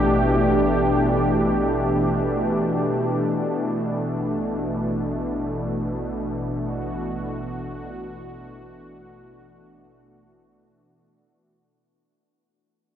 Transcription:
0, 0, Header, 1, 3, 480
1, 0, Start_track
1, 0, Tempo, 500000
1, 12440, End_track
2, 0, Start_track
2, 0, Title_t, "Analog synth pad"
2, 0, Program_c, 0, 89
2, 0, Note_on_c, 0, 47, 63
2, 0, Note_on_c, 0, 52, 77
2, 0, Note_on_c, 0, 57, 71
2, 0, Note_on_c, 0, 62, 73
2, 0, Note_on_c, 0, 67, 72
2, 3097, Note_off_c, 0, 47, 0
2, 3116, Note_off_c, 0, 67, 0
2, 3125, Note_on_c, 0, 47, 74
2, 6324, Note_on_c, 0, 66, 65
2, 11030, Note_off_c, 0, 52, 0
2, 11035, Note_off_c, 0, 62, 0
2, 11036, Note_off_c, 0, 57, 0
2, 11049, Note_off_c, 0, 66, 0
2, 11060, Note_off_c, 0, 47, 0
2, 12440, End_track
3, 0, Start_track
3, 0, Title_t, "Analog synth bass"
3, 0, Program_c, 1, 38
3, 0, Note_on_c, 1, 33, 73
3, 3063, Note_off_c, 1, 33, 0
3, 3095, Note_on_c, 1, 33, 76
3, 10996, Note_off_c, 1, 33, 0
3, 12440, End_track
0, 0, End_of_file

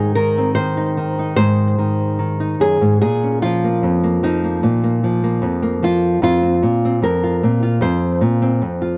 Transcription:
0, 0, Header, 1, 2, 480
1, 0, Start_track
1, 0, Tempo, 815217
1, 1779, Time_signature, 4, 2, 24, 8
1, 2730, Tempo, 794702
1, 5350, End_track
2, 0, Start_track
2, 0, Title_t, "Nylon-string guitar"
2, 0, Program_c, 0, 24
2, 0, Note_on_c, 0, 44, 65
2, 0, Note_on_c, 0, 51, 60
2, 0, Note_on_c, 0, 63, 41
2, 0, Note_on_c, 0, 68, 91
2, 87, Note_off_c, 0, 51, 0
2, 88, Note_off_c, 0, 68, 0
2, 90, Note_on_c, 0, 70, 85
2, 94, Note_on_c, 0, 51, 59
2, 222, Note_on_c, 0, 60, 42
2, 320, Note_off_c, 0, 70, 0
2, 322, Note_off_c, 0, 51, 0
2, 323, Note_on_c, 0, 72, 91
2, 329, Note_on_c, 0, 51, 57
2, 447, Note_off_c, 0, 63, 0
2, 454, Note_on_c, 0, 63, 41
2, 565, Note_off_c, 0, 51, 0
2, 572, Note_on_c, 0, 51, 51
2, 690, Note_off_c, 0, 63, 0
2, 700, Note_on_c, 0, 63, 44
2, 796, Note_off_c, 0, 72, 0
2, 800, Note_off_c, 0, 44, 0
2, 804, Note_on_c, 0, 72, 97
2, 807, Note_on_c, 0, 44, 66
2, 1044, Note_off_c, 0, 51, 0
2, 1051, Note_on_c, 0, 51, 51
2, 1281, Note_off_c, 0, 51, 0
2, 1288, Note_on_c, 0, 51, 54
2, 1406, Note_off_c, 0, 63, 0
2, 1413, Note_on_c, 0, 63, 43
2, 1529, Note_off_c, 0, 44, 0
2, 1531, Note_on_c, 0, 42, 53
2, 1535, Note_off_c, 0, 72, 0
2, 1537, Note_on_c, 0, 68, 83
2, 1653, Note_off_c, 0, 42, 0
2, 1655, Note_on_c, 0, 44, 56
2, 1748, Note_off_c, 0, 51, 0
2, 1749, Note_off_c, 0, 63, 0
2, 1757, Note_off_c, 0, 60, 0
2, 1768, Note_off_c, 0, 68, 0
2, 1775, Note_on_c, 0, 68, 92
2, 1777, Note_off_c, 0, 44, 0
2, 1778, Note_on_c, 0, 46, 65
2, 1905, Note_on_c, 0, 61, 37
2, 2013, Note_off_c, 0, 68, 0
2, 2015, Note_on_c, 0, 65, 84
2, 2023, Note_on_c, 0, 53, 55
2, 2145, Note_on_c, 0, 58, 39
2, 2255, Note_off_c, 0, 46, 0
2, 2255, Note_on_c, 0, 41, 57
2, 2373, Note_off_c, 0, 58, 0
2, 2376, Note_on_c, 0, 58, 39
2, 2488, Note_off_c, 0, 53, 0
2, 2491, Note_on_c, 0, 53, 50
2, 2492, Note_off_c, 0, 61, 0
2, 2494, Note_on_c, 0, 63, 74
2, 2611, Note_off_c, 0, 58, 0
2, 2614, Note_on_c, 0, 58, 42
2, 2726, Note_off_c, 0, 58, 0
2, 2726, Note_on_c, 0, 46, 62
2, 2728, Note_on_c, 0, 58, 44
2, 2729, Note_off_c, 0, 41, 0
2, 2847, Note_off_c, 0, 58, 0
2, 2850, Note_on_c, 0, 58, 42
2, 2964, Note_off_c, 0, 53, 0
2, 2970, Note_off_c, 0, 65, 0
2, 2971, Note_on_c, 0, 53, 54
2, 3089, Note_off_c, 0, 58, 0
2, 3091, Note_on_c, 0, 58, 44
2, 3202, Note_on_c, 0, 41, 56
2, 3210, Note_off_c, 0, 46, 0
2, 3324, Note_off_c, 0, 58, 0
2, 3327, Note_on_c, 0, 58, 45
2, 3441, Note_off_c, 0, 53, 0
2, 3448, Note_on_c, 0, 53, 55
2, 3457, Note_on_c, 0, 65, 84
2, 3662, Note_off_c, 0, 53, 0
2, 3679, Note_off_c, 0, 41, 0
2, 3686, Note_on_c, 0, 41, 69
2, 3689, Note_off_c, 0, 65, 0
2, 3694, Note_off_c, 0, 63, 0
2, 3696, Note_on_c, 0, 65, 86
2, 3807, Note_off_c, 0, 58, 0
2, 3810, Note_on_c, 0, 60, 42
2, 3931, Note_off_c, 0, 41, 0
2, 3931, Note_on_c, 0, 46, 60
2, 4053, Note_off_c, 0, 60, 0
2, 4067, Note_on_c, 0, 60, 43
2, 4171, Note_on_c, 0, 41, 59
2, 4174, Note_off_c, 0, 46, 0
2, 4177, Note_off_c, 0, 65, 0
2, 4179, Note_on_c, 0, 70, 89
2, 4299, Note_on_c, 0, 65, 41
2, 4413, Note_off_c, 0, 41, 0
2, 4414, Note_off_c, 0, 60, 0
2, 4418, Note_on_c, 0, 46, 59
2, 4421, Note_on_c, 0, 60, 42
2, 4529, Note_off_c, 0, 65, 0
2, 4537, Note_on_c, 0, 65, 45
2, 4646, Note_on_c, 0, 41, 70
2, 4650, Note_off_c, 0, 70, 0
2, 4652, Note_on_c, 0, 72, 86
2, 4653, Note_off_c, 0, 46, 0
2, 4885, Note_off_c, 0, 41, 0
2, 4889, Note_on_c, 0, 46, 61
2, 5008, Note_off_c, 0, 60, 0
2, 5015, Note_on_c, 0, 60, 48
2, 5128, Note_off_c, 0, 46, 0
2, 5134, Note_on_c, 0, 41, 62
2, 5247, Note_off_c, 0, 65, 0
2, 5254, Note_on_c, 0, 65, 49
2, 5350, Note_off_c, 0, 41, 0
2, 5350, Note_off_c, 0, 60, 0
2, 5350, Note_off_c, 0, 65, 0
2, 5350, Note_off_c, 0, 72, 0
2, 5350, End_track
0, 0, End_of_file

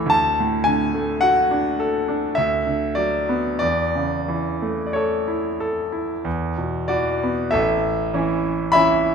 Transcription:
0, 0, Header, 1, 2, 480
1, 0, Start_track
1, 0, Key_signature, 3, "major"
1, 0, Tempo, 1123596
1, 49, Time_signature, 3, 2, 24, 8
1, 1010, Tempo, 1255230
1, 1490, Tempo, 1330377
1, 1970, Tempo, 1287554
1, 2930, Tempo, 1219512
1, 3410, Tempo, 1100917
1, 3586, End_track
2, 0, Start_track
2, 0, Title_t, "Grand piano"
2, 0, Program_c, 0, 0
2, 0, Control_c, 0, 64, 127
2, 0, Note_on_c, 0, 52, 53
2, 0, Note_on_c, 0, 57, 51
2, 0, Note_on_c, 0, 64, 52
2, 0, Note_on_c, 0, 69, 57
2, 0, Note_on_c, 0, 73, 95
2, 26, Note_on_c, 0, 38, 61
2, 41, Note_on_c, 0, 81, 97
2, 44, Note_off_c, 0, 73, 0
2, 50, Note_off_c, 0, 52, 0
2, 56, Control_c, 0, 64, 0
2, 58, Note_off_c, 0, 69, 0
2, 59, Note_off_c, 0, 57, 0
2, 59, Note_off_c, 0, 64, 0
2, 127, Control_c, 0, 64, 127
2, 171, Note_on_c, 0, 45, 54
2, 273, Note_on_c, 0, 80, 90
2, 279, Note_off_c, 0, 81, 0
2, 283, Note_on_c, 0, 50, 49
2, 357, Note_off_c, 0, 45, 0
2, 403, Note_on_c, 0, 57, 50
2, 473, Note_off_c, 0, 50, 0
2, 515, Note_on_c, 0, 78, 94
2, 516, Note_off_c, 0, 80, 0
2, 524, Note_on_c, 0, 66, 54
2, 594, Note_off_c, 0, 57, 0
2, 645, Note_on_c, 0, 62, 51
2, 716, Note_off_c, 0, 66, 0
2, 768, Note_on_c, 0, 69, 57
2, 838, Note_off_c, 0, 62, 0
2, 890, Note_on_c, 0, 62, 50
2, 963, Note_off_c, 0, 69, 0
2, 982, Note_off_c, 0, 38, 0
2, 1004, Note_on_c, 0, 76, 78
2, 1008, Note_off_c, 0, 78, 0
2, 1013, Note_off_c, 0, 62, 0
2, 1015, Note_on_c, 0, 38, 60
2, 1019, Control_c, 0, 64, 0
2, 1094, Control_c, 0, 64, 127
2, 1126, Note_on_c, 0, 50, 45
2, 1234, Note_on_c, 0, 74, 79
2, 1240, Note_off_c, 0, 76, 0
2, 1243, Note_on_c, 0, 54, 45
2, 1316, Note_off_c, 0, 50, 0
2, 1364, Note_on_c, 0, 59, 47
2, 1440, Note_off_c, 0, 54, 0
2, 1473, Note_off_c, 0, 74, 0
2, 1479, Note_off_c, 0, 38, 0
2, 1479, Note_on_c, 0, 74, 85
2, 1487, Note_on_c, 0, 40, 54
2, 1491, Note_off_c, 0, 59, 0
2, 1498, Control_c, 0, 64, 0
2, 1565, Control_c, 0, 64, 127
2, 1610, Note_on_c, 0, 49, 46
2, 1730, Note_on_c, 0, 52, 44
2, 1803, Note_off_c, 0, 49, 0
2, 1851, Note_on_c, 0, 57, 43
2, 1922, Note_off_c, 0, 52, 0
2, 1934, Note_off_c, 0, 74, 0
2, 1939, Note_on_c, 0, 74, 46
2, 1963, Note_on_c, 0, 73, 61
2, 1971, Note_off_c, 0, 74, 0
2, 1973, Note_on_c, 0, 69, 50
2, 2044, Note_off_c, 0, 57, 0
2, 2092, Note_on_c, 0, 64, 43
2, 2168, Note_off_c, 0, 69, 0
2, 2214, Note_on_c, 0, 69, 53
2, 2287, Note_off_c, 0, 64, 0
2, 2332, Note_on_c, 0, 64, 45
2, 2407, Note_off_c, 0, 69, 0
2, 2439, Note_off_c, 0, 40, 0
2, 2452, Note_off_c, 0, 73, 0
2, 2453, Note_on_c, 0, 40, 59
2, 2454, Note_off_c, 0, 64, 0
2, 2463, Control_c, 0, 64, 0
2, 2551, Control_c, 0, 64, 127
2, 2576, Note_on_c, 0, 47, 36
2, 2689, Note_on_c, 0, 74, 75
2, 2694, Note_on_c, 0, 66, 58
2, 2698, Note_on_c, 0, 52, 42
2, 2772, Note_off_c, 0, 47, 0
2, 2821, Note_on_c, 0, 59, 41
2, 2887, Note_off_c, 0, 52, 0
2, 2914, Note_off_c, 0, 66, 0
2, 2916, Note_off_c, 0, 40, 0
2, 2923, Note_on_c, 0, 76, 76
2, 2926, Note_off_c, 0, 74, 0
2, 2928, Note_on_c, 0, 69, 60
2, 2932, Note_off_c, 0, 59, 0
2, 2932, Note_on_c, 0, 33, 62
2, 2938, Control_c, 0, 64, 0
2, 3014, Control_c, 0, 64, 127
2, 3166, Note_off_c, 0, 33, 0
2, 3171, Note_on_c, 0, 52, 51
2, 3173, Note_on_c, 0, 61, 48
2, 3174, Note_on_c, 0, 64, 52
2, 3394, Note_off_c, 0, 69, 0
2, 3395, Note_off_c, 0, 52, 0
2, 3395, Note_off_c, 0, 61, 0
2, 3396, Note_off_c, 0, 64, 0
2, 3399, Note_off_c, 0, 76, 0
2, 3399, Note_on_c, 0, 83, 101
2, 3405, Note_on_c, 0, 76, 79
2, 3409, Note_on_c, 0, 52, 52
2, 3411, Note_on_c, 0, 61, 47
2, 3412, Note_on_c, 0, 64, 57
2, 3586, Note_off_c, 0, 52, 0
2, 3586, Note_off_c, 0, 61, 0
2, 3586, Note_off_c, 0, 64, 0
2, 3586, Note_off_c, 0, 76, 0
2, 3586, Note_off_c, 0, 83, 0
2, 3586, End_track
0, 0, End_of_file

